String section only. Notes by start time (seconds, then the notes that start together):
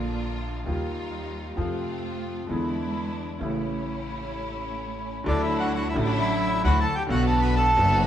Already playing: A#3 D4 F4
0.66 G3 D#4 F4
1.57 A3 C4 F4
2.49 G#3 D4 E4
3.40 A3 C#4 E4
5.26 F#3 D4 E4
5.96 F#3 D4 E4
6.64 F#3 D4 E4
7.09 B3 D4 F#4
7.77 B3 D4 F#4